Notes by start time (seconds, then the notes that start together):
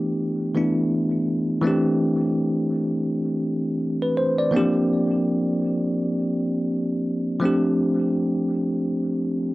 Already playing: E3 A3 B3 D4 G4
0.55 E3 A3 B3 D4 E4
1.62 E3 A3 C4
1.66 D4 G4
4.02 B4
4.17 C5
4.38 D5
4.51 E3 A#3 C4
4.55 F3 D4 G4
7.40 F3 A3 C4
7.44 D4 G4